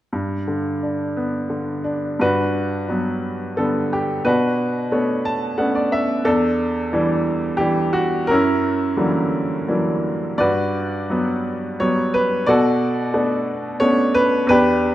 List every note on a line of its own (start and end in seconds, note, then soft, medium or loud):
0.13 2.17 G2 soft
0.48 1.48 D3 soft
0.83 1.83 D4 soft
1.17 2.18 B3 soft
1.50 2.18 D3 soft
1.84 2.19 D4 soft
2.19 4.21 G2 soft
2.19 3.56 D4 medium
2.19 3.55 F#4 medium
2.19 3.55 B4 medium
2.89 3.56 F#3 soft
2.89 3.56 G3 soft
2.89 3.56 B3 soft
3.57 4.24 D3 soft
3.57 4.24 G3 soft
3.57 4.24 B3 soft
3.57 3.89 A4 medium
3.93 4.24 G4 medium
4.25 6.22 B2 medium
4.25 4.90 D4 soft
4.25 5.22 F#4 medium
4.25 4.88 B4 medium
4.92 5.56 A3 soft
4.92 5.57 B3 soft
4.92 5.57 D4 soft
4.92 5.57 C#5 soft
5.25 5.57 A5 medium
5.58 6.24 A3 soft
5.58 6.24 B3 soft
5.58 6.24 C#4 soft
5.58 6.24 D4 soft
5.58 5.74 F#5 soft
5.75 5.91 D5 medium
5.92 6.24 E5 medium
6.25 8.26 E2 medium
6.25 6.92 D4 medium
6.25 7.65 A4 medium
6.93 7.58 E3 soft
6.93 7.59 G3 soft
6.93 7.59 D4 soft
7.57 8.28 E3 soft
7.57 8.28 G3 soft
7.57 8.28 D4 soft
7.57 7.95 G4 medium
7.93 8.30 F#4 medium
8.27 10.37 F#2 medium
8.27 8.93 A#4 medium
8.31 9.30 C#4 medium
8.31 9.30 E4 medium
8.97 9.66 D3 soft
8.97 9.66 E3 soft
8.97 9.66 F#3 soft
8.97 9.66 G3 soft
8.97 9.67 A#3 soft
9.68 10.38 E3 soft
9.68 10.38 F#3 soft
9.68 10.38 G3 soft
9.68 10.39 A#3 soft
9.68 10.39 D4 soft
10.38 12.44 G2 soft
10.38 11.78 F#4 medium
10.38 11.78 B4 medium
10.38 11.85 D5 medium
11.10 11.79 F#3 soft
11.10 11.79 G3 soft
11.10 11.80 B3 soft
11.80 12.47 F#3 soft
11.80 12.47 G3 soft
11.80 12.47 B3 soft
11.80 12.13 C#5 medium
12.14 12.50 B4 medium
12.46 14.44 B2 medium
12.46 13.79 F#4 medium
12.46 13.79 A4 medium
12.46 13.86 D5 medium
13.14 13.79 A3 soft
13.14 13.79 B3 soft
13.14 13.79 D4 medium
13.80 14.46 A3 soft
13.80 14.46 B3 soft
13.80 14.46 C#4 soft
13.80 14.46 D4 medium
13.80 14.16 C#5 medium
14.14 14.47 B4 medium
14.47 14.95 E2 medium
14.47 14.95 D4 medium
14.47 14.95 G4 medium
14.47 14.95 B4 medium